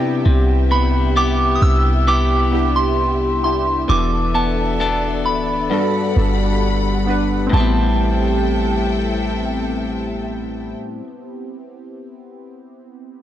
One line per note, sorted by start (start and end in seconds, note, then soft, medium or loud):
0.00 0.24 C3 medium
0.00 3.85 G3 medium
0.00 0.28 B3 medium
0.00 1.25 B3 medium
0.00 1.25 D4 medium
0.00 1.26 E4 medium
0.00 1.26 G4 loud
0.00 3.85 G4 medium
0.00 3.85 E5 medium
0.00 0.22 G5 medium
0.25 1.58 C2 loud
0.25 3.89 C3 medium
0.71 1.16 B3 medium
0.71 0.86 B5 medium
1.16 2.07 B3 medium
1.16 2.08 E4 medium
1.16 2.07 G4 medium
1.16 1.56 D6 loud
1.55 1.62 D#6 medium
1.62 3.85 C2 loud
1.62 2.09 E6 loud
2.07 4.34 B3 medium
2.07 3.99 E4 medium
2.07 3.99 G4 medium
2.07 2.72 D6 loud
2.51 3.13 B3 medium
2.51 3.14 D4 medium
2.51 3.14 E4 medium
2.51 3.15 G4 medium
2.76 3.43 C6 medium
3.43 3.74 B3 medium
3.43 3.74 D4 medium
3.43 3.75 E4 medium
3.43 3.75 G4 medium
3.43 3.86 C6 medium
3.88 5.27 E1 loud
3.88 5.80 E3 medium
3.88 5.11 B3 medium
3.88 5.11 D4 medium
3.88 5.12 F#4 medium
3.88 3.97 G4 medium
3.88 5.69 A4 medium
3.88 7.49 D5 medium
3.88 5.69 E5 medium
3.88 5.48 D6 medium
3.88 4.36 D6 loud
3.98 5.16 A4 medium
4.35 4.80 B3 medium
4.35 5.28 A5 medium
4.80 5.80 B3 medium
4.80 5.80 D4 medium
4.80 5.81 A4 medium
5.26 5.69 D1 loud
5.26 6.58 B5 medium
5.70 7.49 G2 medium
5.70 7.51 G3 medium
5.70 6.07 B3 medium
5.70 6.07 D4 medium
5.70 6.08 F#4 medium
5.70 6.08 A4 medium
5.70 7.51 F#5 medium
5.70 7.51 B5 medium
6.15 7.49 G1 loud
6.15 6.77 B3 medium
6.15 6.78 D4 medium
6.15 6.78 F#4 medium
6.15 6.79 A4 medium
7.06 7.37 B3 medium
7.06 7.38 D4 medium
7.06 7.38 F#4 medium
7.06 7.39 B4 medium
7.47 11.00 A2 medium
7.47 10.68 C4 medium
7.51 10.75 A1 loud
7.51 10.74 C3 medium
7.51 11.04 G3 medium
7.51 10.72 E4 medium
7.51 10.74 A4 medium
7.51 10.74 E5 medium
7.51 10.74 G5 medium
7.51 10.75 A5 medium
7.51 10.75 C6 medium
7.55 11.07 C4 medium
7.55 10.77 G4 medium
7.59 10.81 B3 medium
7.59 11.10 E4 medium